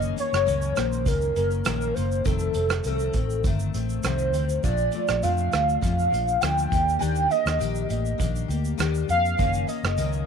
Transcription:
Already playing: F#1 F#2 D#3 A#3 C#4 D#5
0.02 shaker
0.16 D#3 A#3 C#4 C#5, closed hi-hat, shaker
0.33 F#1, cross-stick, shaker
0.45 C#2 F#2 D#3 A#3 C#4, closed hi-hat, shaker
0.62 shaker
0.75 A#1 D#3 A#3 C#4 C5, cross-stick, closed hi-hat, shaker
0.92 shaker
1.06 C#2 F#2 D#3 A#3 C#4 A#4, kick, closed hi-hat, shaker
1.21 shaker
1.36 F#1 D#3 A#3 C#4 A#4, closed hi-hat, shaker
1.51 shaker
1.65 A#1 F#2 D#3 A#3 C#4, cross-stick, closed hi-hat, shaker
1.81 shaker
1.94 F#1 D#3 A#3 C#4 C5, closed hi-hat, shaker
2.12 shaker
2.25 F1 F2 D#3 A3 C4 A4, kick, closed hi-hat, shaker
2.39 shaker
2.54 F1 D#3 A3 C4, closed hi-hat, shaker
2.70 cross-stick, shaker
2.84 C2 F2 D#3 A3 C4 A4, closed hi-hat, shaker
2.99 shaker
3.13 A1 D#3 A3 C4, kick, closed hi-hat, shaker
3.30 shaker
3.44 G1 F2 D#3 A3 C4, kick, closed hi-hat, shaker
3.60 shaker
3.74 A1 D#3 A3 C4, closed hi-hat, shaker
3.89 shaker
4.03 C2 F2 D#3 A3 C4 C5, cross-stick, closed hi-hat, shaker
4.19 shaker
4.34 D2 D#3 A3 C4, closed hi-hat, shaker
4.49 shaker
4.63 A#1 A#2 F3 A3 D4 D5, kick, closed hi-hat, shaker
4.77 shaker
4.92 F3 A3 D4, closed hi-hat, shaker
5.08 A#1, cross-stick, shaker
5.23 F2 A#2 F3 A3 D4 F5, closed hi-hat, shaker
5.38 shaker
5.52 D2 F3 A3 D4, cross-stick, closed hi-hat, shaker
5.69 shaker
5.81 F2 A#2 F3 A3 D4 F5, kick, closed hi-hat, shaker
5.99 shaker
6.10 A#1 F3 A3 D4, closed hi-hat, shaker
6.28 shaker
6.41 D2 A#2 F3 A3 D4 G5, cross-stick, closed hi-hat, shaker
6.58 shaker
6.70 D#2 A#3 D4 G4, kick, closed hi-hat, shaker
6.89 shaker
6.99 D#2 D#3 A#3 D4 G4 G5, closed hi-hat, shaker
7.15 shaker
7.29 A#3 D4 G4 D#5, closed hi-hat, shaker
7.46 D#2, cross-stick, shaker
7.59 A#1 D#3 A#3 D4 G4, closed hi-hat, shaker
7.75 shaker
7.88 A1 A#3 D4 G4 D#5, closed hi-hat, shaker
8.06 shaker
8.18 A#1 D#3 A#3 D4 G4, kick, closed hi-hat, shaker
8.36 shaker
8.48 D2 A#3 D4 G4, closed hi-hat, shaker
8.65 shaker
8.78 D#2 D#3 A#3 D4 G4, cross-stick, closed hi-hat, shaker
8.95 shaker
9.09 F2 A#3 D4 G4 F5, closed hi-hat, shaker
9.25 shaker
9.37 F#1 F#2 D#3 A#3 C#4, kick, closed hi-hat, shaker
9.54 shaker
9.67 D#3 A#3 C#4 D#5, closed hi-hat, shaker
9.83 F#1, cross-stick, shaker
9.97 C#2 F#2 D#3 A#3 C#4, closed hi-hat, shaker
10.12 shaker

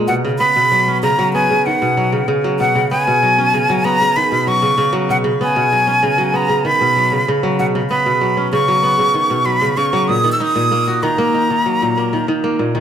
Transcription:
Already playing: A#2 G#3 A#3
0.08 B2 F#5
0.25 C#3
0.39 B3 B5
0.56 B2
0.71 F#3
0.88 C#4
1.03 C#3 A#5
1.19 F#3
1.34 B3 G#5
1.51 C#3
1.66 D#3 F#5
1.82 B2
1.97 F#3
2.12 C#3
2.28 C#3
2.44 F#3
2.60 B2 F#5
2.75 C#3
2.91 B3 G#5
3.07 B2
3.23 F#3
3.38 C#4
3.54 C#3
3.70 F#3
3.84 B3 A#5
4.01 C#3
4.16 D#3 B5
4.32 B2
4.47 F#3 C#6
4.62 C#3
4.78 C#3
4.93 F#3
5.09 B2 F#5
5.24 C#3
5.41 B3 G#5
5.56 B2
5.72 F#3
5.87 C#4
6.03 C#3
6.18 F#3
6.34 B3 A#5
6.49 C#3
6.65 D#3 B5
6.81 B2
6.96 F#3
7.12 C#3
7.28 C#3
7.43 F#3
7.59 B2 F#5
7.75 C#3
7.90 B3 B5
8.06 B2
8.21 F#3
8.37 C#4
8.53 C#3 C#6
8.68 F#3
8.84 B3
8.99 C#3
9.14 D#3
9.30 B2
9.45 F#3 B5
9.61 C#3
9.77 C#3 C#6
9.93 F#3
10.08 A#2 D#6
10.24 D#3
10.32 E6
10.40 D#4 D#6
10.56 A#2
10.72 A#3
10.88 F#4
11.03 D#3 A#5
11.18 A#3
11.34 D#4
11.50 D#3
11.66 F#3
11.82 A#2
11.97 A#3
12.13 D#3
12.28 D#3
12.44 A#3
12.59 A#2
12.75 D#3

